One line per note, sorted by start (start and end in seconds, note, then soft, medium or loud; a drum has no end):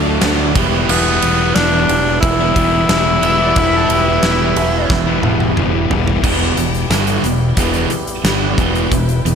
0.00 0.19 D2 loud
0.00 0.20 D3 medium
0.00 0.53 D3 medium
0.00 0.21 F#3 medium
0.00 0.54 F#3 medium
0.00 0.22 A3 medium
0.00 0.53 A3 medium
0.00 0.54 A3 medium
0.00 0.23 D4 medium
0.00 0.53 D4 medium
0.00 0.55 D4 loud
0.00 0.53 F#4 medium
0.00 0.53 A4 medium
0.22 0.52 D2 loud
0.22 0.53 D3 loud
0.22 0.40 F#3 medium
0.22 0.38 A3 medium
0.22 0.37 D4 loud
0.22 snare loud
0.22 ride loud
0.39 0.54 F#3 medium
0.39 0.54 A3 medium
0.39 0.53 D4 medium
0.55 0.85 E1 medium
0.55 0.88 E3 medium
0.55 3.20 G3 medium
0.55 0.74 G3 loud
0.55 3.20 B3 medium
0.55 0.73 B3 medium
0.55 3.20 E4 medium
0.55 0.72 E4 medium
0.55 3.20 G4 medium
0.55 kick loud
0.55 ride medium
0.72 0.89 G3 medium
0.72 0.89 B3 medium
0.72 0.90 E4 medium
0.88 1.19 E1 loud
0.88 1.22 E3 medium
0.88 1.23 G3 medium
0.88 1.57 B3 loud
0.88 1.24 B3 loud
0.88 1.24 E4 loud
0.88 crash loud
1.22 1.53 E1 medium
1.22 1.56 E3 medium
1.22 1.42 G3 medium
1.22 1.41 B3 medium
1.22 1.39 E4 medium
1.22 ride medium
1.40 1.57 G3 medium
1.40 1.58 B3 medium
1.40 1.58 E4 medium
1.55 1.86 E1 medium
1.55 1.90 E3 medium
1.55 1.75 G3 loud
1.55 1.75 B3 medium
1.55 2.20 D4 loud
1.55 1.73 E4 loud
1.55 snare loud
1.55 ride medium
1.74 1.90 G3 medium
1.74 1.91 B3 medium
1.74 1.91 E4 medium
1.89 2.19 E1 medium
1.89 muted distorted electric guitar stroke medium
1.89 ride medium
2.21 2.53 E1 loud
2.21 5.52 E4 loud
2.21 kick loud
2.21 ride loud
2.40 2.57 G3 medium
2.40 2.58 B3 medium
2.40 2.58 E4 medium
2.56 2.86 E1 loud
2.56 2.90 E3 medium
2.56 2.91 G3 medium
2.56 2.92 B3 medium
2.56 2.92 E4 medium
2.56 kick medium
2.56 ride medium
2.89 3.19 E1 loud
2.89 3.23 E3 medium
2.89 3.09 G3 medium
2.89 3.07 B3 loud
2.89 3.06 E4 loud
2.89 snare loud
2.89 ride medium
3.07 3.24 G3 medium
3.07 3.25 B3 medium
3.07 3.25 E4 medium
3.22 3.53 E1 medium
3.22 3.56 E3 medium
3.22 3.41 G3 medium
3.22 6.21 B3 medium
3.22 3.40 B3 medium
3.22 6.21 E4 medium
3.22 3.39 E4 medium
3.22 6.21 G4 medium
3.22 3.39 E5 loud
3.22 ride medium
3.40 3.56 G3 medium
3.40 3.57 B3 medium
3.40 3.58 E4 medium
3.40 3.57 D5 medium
3.56 3.86 E1 loud
3.56 3.88 E3 medium
3.56 3.90 G3 loud
3.56 3.91 B3 loud
3.56 3.91 E4 loud
3.56 3.76 B4 medium
3.56 kick loud
3.56 ride medium
3.76 3.93 A4 medium
3.89 4.19 E1 medium
3.89 4.21 E3 medium
3.89 4.07 G3 medium
3.89 4.06 B3 medium
3.89 4.05 E4 medium
3.89 4.09 G4 medium
3.89 ride medium
4.06 4.22 G3 medium
4.06 4.23 B3 medium
4.06 4.24 E4 medium
4.23 4.53 E1 medium
4.23 4.56 E3 medium
4.23 4.41 G3 medium
4.23 4.40 B3 loud
4.23 4.39 E4 medium
4.23 4.90 E4 loud
4.23 snare loud
4.23 ride medium
4.40 4.56 G3 medium
4.40 4.57 B3 medium
4.40 4.57 E4 medium
4.56 4.86 E1 medium
4.56 muted distorted electric guitar stroke medium
4.56 ride medium
4.90 5.20 E1 loud
4.90 kick loud
4.90 snare medium
5.07 5.23 G3 medium
5.07 5.24 B3 medium
5.07 5.25 E4 medium
5.23 5.53 E1 loud
5.23 5.55 E3 medium
5.23 5.56 G3 medium
5.23 5.57 B3 medium
5.23 5.57 E4 medium
5.23 high tom medium
5.40 high tom medium
5.56 5.87 E1 medium
5.56 5.89 E3 medium
5.56 5.75 G3 loud
5.56 5.73 B3 loud
5.56 5.72 E4 loud
5.56 mid tom medium
5.74 5.90 G3 medium
5.74 5.91 B3 medium
5.74 5.92 E4 medium
5.90 6.20 E1 loud
5.90 6.22 E3 medium
5.90 6.09 G3 medium
5.90 6.07 B3 medium
5.90 6.06 E4 medium
5.90 floor tom loud
6.08 6.23 G3 medium
6.08 6.23 B3 medium
6.08 6.22 E4 medium
6.08 floor tom loud
6.24 6.55 E1 loud
6.24 6.56 E2 loud
6.24 6.57 B2 loud
6.24 6.57 E3 loud
6.24 8.89 G3 medium
6.24 8.89 B3 medium
6.24 8.89 E4 medium
6.24 8.89 G4 medium
6.24 kick loud
6.24 crash loud
6.57 6.88 E1 medium
6.57 6.85 E2 medium
6.57 6.85 B2 medium
6.57 closed hi-hat medium
6.75 closed hi-hat soft
6.90 7.21 G1 loud
6.90 7.23 G2 medium
6.90 7.23 D3 medium
6.90 7.24 G3 medium
6.90 snare loud
6.90 closed hi-hat medium
7.07 closed hi-hat soft
7.23 7.55 E1 medium
7.23 7.51 E2 medium
7.23 7.52 B2 medium
7.23 closed hi-hat medium
7.57 7.88 E1 medium
7.57 7.90 E2 loud
7.57 7.90 B2 medium
7.57 7.91 E3 loud
7.57 kick loud
7.57 closed hi-hat loud
7.74 closed hi-hat soft
7.90 muted fingered electric bass stroke soft
7.90 muted distorted electric guitar stroke medium
7.90 muted overdriven electric guitar stroke medium
7.90 closed hi-hat medium
8.07 closed hi-hat soft
8.24 8.55 G1 medium
8.24 8.57 G2 loud
8.24 8.58 D3 loud
8.24 8.58 G3 loud
8.24 snare loud
8.24 closed hi-hat loud
8.58 8.89 E1 medium
8.58 8.91 E2 medium
8.58 8.91 B2 medium
8.58 8.91 E3 loud
8.58 kick loud
8.58 closed hi-hat medium
8.75 closed hi-hat soft
8.91 9.23 E1 medium
8.91 9.19 E2 medium
8.91 9.19 B2 medium
8.91 9.35 E3 medium
8.91 9.35 E4 medium
8.91 9.35 B4 medium
8.91 9.35 G5 medium
8.91 kick medium
8.91 closed hi-hat medium
9.09 closed hi-hat soft
9.25 9.35 E1 medium
9.25 9.35 E2 medium
9.25 9.35 B2 medium
9.25 closed hi-hat medium